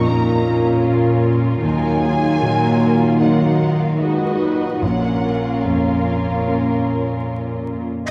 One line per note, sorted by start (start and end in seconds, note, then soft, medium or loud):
0.00 1.59 A#1 medium
0.00 0.53 F2 soft
0.00 1.59 A#2 medium
0.00 0.80 D#4 medium
0.00 1.46 F4 medium
0.00 1.46 A#4 medium
0.05 1.60 A#3 soft
0.05 1.63 C#4 medium
0.05 1.60 F4 soft
0.05 0.42 A#4 soft
0.05 1.60 A#4 soft
0.05 0.84 A#5 medium
0.44 1.60 A#4 soft
0.84 3.97 F4 medium
0.84 1.23 F4 medium
1.24 1.63 F4 medium
1.63 4.78 D#2 medium
1.63 4.83 D#3 medium
1.63 3.18 F#3 medium
1.63 2.41 A#3 soft
1.63 3.18 A#3 medium
1.63 2.43 D#4 medium
1.63 2.03 A#4 medium
1.63 3.18 G#5 medium
2.03 2.43 G#4 soft
2.42 3.69 A#2 soft
2.42 2.82 F#3 medium
2.42 3.98 A#3 medium
2.42 3.22 A#4 soft
2.82 3.22 F4 soft
3.21 3.99 F#3 medium
3.21 4.78 F#3 soft
3.21 3.99 A#3 soft
3.21 4.78 D#4 soft
3.21 4.00 D#4 soft
3.21 4.00 A#4 soft
3.21 3.81 F#5 medium
3.81 4.01 F5 medium
4.01 4.80 A#2 soft
4.01 4.42 G#3 soft
4.01 4.81 D#4 soft
4.01 4.80 F#4 soft
4.01 4.82 F#4 soft
4.01 4.83 B4 soft
4.01 4.82 D#5 medium
4.41 4.82 F#3 soft
4.82 8.06 A#1 soft
4.82 7.86 A#2 soft
4.82 7.86 A#3 soft
4.82 5.63 A#3 soft
4.82 7.90 C#4 soft
4.82 5.64 C#4 soft
4.82 7.90 F4 soft
4.82 7.90 A#4 soft
4.82 5.63 F#5 medium
5.64 6.97 F2 soft
5.64 7.74 A#3 soft
5.64 7.74 C#4 soft
5.64 7.29 F5 soft
6.47 8.06 A#3 soft
6.47 8.06 C#4 soft
6.47 8.06 A#4 soft